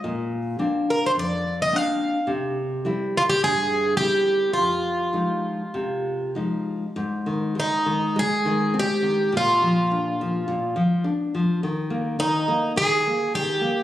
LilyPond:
<<
  \new Staff \with { instrumentName = "Twelve-string acoustic guitar" } { \time 4/4 \key f \minor \tempo 4 = 105 r4. bes'16 c''16 d''8. ees''16 f''4 | r4. f'16 g'16 aes'4 g'4 | f'2. r4 | \key bes \dorian r4 ees'4 aes'4 g'4 |
f'2. r4 | r4 ees'4 aes'4 g'4 | }
  \new Staff \with { instrumentName = "Nylon-string guitar" } { \clef bass \time 4/4 \key f \minor bes,4 <bes c' d'>4 f,4 <bes c' d'>4 | c4 <g c' e'>4 g,4 <g c' e'>4 | f,4 <f aes ees'>4 c4 <f aes ees'>4 | \key bes \dorian aes,8 ees8 aes8 ees8 aes8 ees8 c'8 ees8 |
bes,8 f8 d'8 f8 bes,8 f8 d'8 f8 | ees8 bes8 ees8 bes8 ees8 bes8 ees8 bes8 | }
>>